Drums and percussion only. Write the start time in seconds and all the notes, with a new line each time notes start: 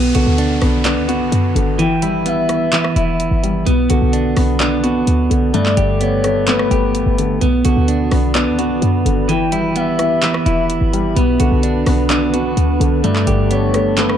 0.15 closed hi-hat
0.38 closed hi-hat
0.61 cross-stick, open hi-hat
0.85 clap, closed hi-hat
1.09 closed hi-hat
1.32 closed hi-hat
1.56 closed hi-hat
1.79 closed hi-hat
2.02 closed hi-hat
2.26 closed hi-hat
2.49 cross-stick, closed hi-hat
2.72 clap, closed hi-hat
2.84 cross-stick
2.96 closed hi-hat
3.20 closed hi-hat
3.44 closed hi-hat
3.67 closed hi-hat
3.90 closed hi-hat
4.13 closed hi-hat
4.37 cross-stick, open hi-hat
4.60 clap, closed hi-hat
4.84 closed hi-hat
5.07 closed hi-hat
5.31 closed hi-hat
5.54 closed hi-hat
5.66 clap
5.77 closed hi-hat
6.01 closed hi-hat
6.24 cross-stick, closed hi-hat
6.47 clap, closed hi-hat
6.59 cross-stick
6.71 closed hi-hat
6.95 closed hi-hat
7.18 closed hi-hat
7.41 closed hi-hat
7.65 closed hi-hat
7.88 closed hi-hat
8.11 cross-stick, open hi-hat
8.35 clap, closed hi-hat
8.59 closed hi-hat
8.82 closed hi-hat
9.06 closed hi-hat
9.29 closed hi-hat
9.52 closed hi-hat
9.76 closed hi-hat
9.99 cross-stick, closed hi-hat
10.22 clap, closed hi-hat
10.34 cross-stick
10.46 closed hi-hat
10.70 closed hi-hat
10.93 closed hi-hat
11.16 closed hi-hat
11.40 closed hi-hat
11.63 closed hi-hat
11.86 cross-stick, open hi-hat
12.10 clap, closed hi-hat
12.34 closed hi-hat
12.57 closed hi-hat
12.81 closed hi-hat
13.04 closed hi-hat
13.16 clap
13.27 closed hi-hat
13.51 closed hi-hat
13.74 cross-stick, closed hi-hat
13.97 clap, closed hi-hat
14.09 cross-stick